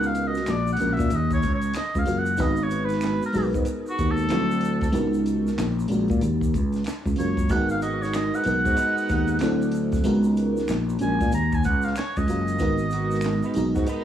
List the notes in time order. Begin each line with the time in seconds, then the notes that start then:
Already playing: C#2 G#3 B3 D#4 F#4 A#4
0.03 F5, shaker
0.15 closed hi-hat, shaker
0.27 D#5
0.35 snare, shaker
0.46 A#1 D5, finger snap, snare, clap, closed hi-hat, shaker
0.67 shaker
0.73 F#5, closed hi-hat
0.78 A#1 G#3 C#4 D4 F#4 A#4, shaker
0.93 E5, closed hi-hat
0.99 A#2, kick, snare, shaker
1.10 D#2, closed hi-hat, shaker
1.15 D#5
1.31 C#5, kick, shaker
1.42 C#2, kick, closed hi-hat, shaker
1.55 C#5
1.62 closed hi-hat, shaker
1.74 D#5, finger snap, snare, clap, closed hi-hat, shaker
1.95 C#2 F5, kick, shaker
2.05 F#1 G#3 C#4 F4 F#4 A#4, closed hi-hat, shaker
2.19 F#5
2.26 closed hi-hat, shaker
2.37 G#1 G#3 B3 D#4 F#4 B4, kick, closed hi-hat, shaker
2.41 D#5
2.56 shaker
2.63 C#5
2.70 closed hi-hat, shaker
2.85 B4, closed hi-hat
2.90 snare, shaker
3.01 finger snap, snare, clap, closed hi-hat, shaker
3.22 A#4, shaker
3.33 B1 G#3 B3 D#4 F#4 G#4, open hi-hat, shaker
3.43 A#4
3.53 G#2, kick, closed hi-hat, shaker
3.65 closed hi-hat, shaker
3.87 F#4, shaker
3.98 D#2, kick, closed hi-hat, shaker
4.11 A4
4.17 shaker
4.28 D2 F3 C4 D4 E4 A4, finger snap, snare, clap, closed hi-hat, shaker
4.35 F#3
4.51 shaker
4.61 closed hi-hat, shaker
4.81 kick, snare, closed hi-hat, shaker
4.92 C#2 G#3 B3 D#4 F#4 A#4, closed hi-hat, shaker
5.14 shaker
5.26 closed hi-hat, shaker
5.47 snare, shaker
5.58 A#1, finger snap, snare, clap, closed hi-hat, shaker
5.79 shaker
5.88 A#1 G#3 C#4 D4 F#4 A#4, closed hi-hat, shaker
6.08 A#2, kick, closed hi-hat, shaker
6.21 D#2, closed hi-hat, shaker
6.41 kick, shaker
6.54 C#2, kick, closed hi-hat, shaker
6.73 snare, closed hi-hat, shaker
6.84 finger snap, snare, clap, closed hi-hat, shaker
7.06 C#2, kick, shaker
7.16 F#1 G#3 C#4 F4 F#4 A#4 C#5, closed hi-hat, shaker
7.37 kick, shaker
7.49 G#1 G#3 A#3 D#4 F#4 A#4 F#5, kick, closed hi-hat, shaker
7.57 B3
7.69 F5, shaker
7.82 B3 D#4 F#4 D#5, closed hi-hat, shaker
8.02 C#5, snare, shaker
8.13 D#5, finger snap, snare, clap, closed hi-hat, shaker
8.33 G#3 B3 D#4 F#5, shaker
8.43 B1 G#3 B3 D#4 F#4, closed hi-hat, shaker
8.48 A#4
8.65 G#2 B3 D#4 F#4, kick, snare, shaker
8.77 G#3 B3 D#4, closed hi-hat, shaker
8.97 shaker
9.09 D#2, kick, closed hi-hat, shaker
9.28 closed hi-hat, shaker
9.39 D2 F#3 C4 D4, finger snap, snare, clap, closed hi-hat, shaker
9.43 E4 A4
9.62 shaker
9.72 closed hi-hat, shaker
9.92 kick, snare, closed hi-hat, shaker
10.04 C#2 G#3 B3 D#4 F#4 A#4, closed hi-hat, shaker
10.23 shaker
10.37 closed hi-hat, shaker
10.57 snare, shaker
10.68 A#1, finger snap, snare, clap, closed hi-hat, shaker
10.89 shaker
10.99 A#1 G#3 C#4 D4 F#4 A#4 G#5, closed hi-hat, shaker
11.21 A#2, kick, snare, shaker
11.32 D#2 A#5, closed hi-hat, shaker
11.52 G#5, kick, shaker
11.64 C#2 F#5, kick, closed hi-hat, shaker
11.82 F5, shaker
11.87 snare
11.96 C#5, finger snap, snare, clap, closed hi-hat, shaker
12.16 C#2 D#5, kick, shaker
12.27 F#1 G#3 C#4 F4 F#4 A#4, closed hi-hat, shaker
12.47 closed hi-hat, shaker
12.59 G#1 G#3 B3 D#4 F#4 A#4, kick, closed hi-hat, shaker
12.78 shaker
12.90 B3 D#4 F#4, closed hi-hat, shaker
13.11 snare, shaker
13.21 finger snap, closed hi-hat, shaker
13.25 snare, clap
13.43 G#3 B3 D#4, shaker
13.54 B1 G#3 B3 D#4 F#4 A#4, closed hi-hat, shaker
13.75 G#2 B3 D#4 F#4, kick, snare, shaker
13.86 G#3 B3 D#4, closed hi-hat, shaker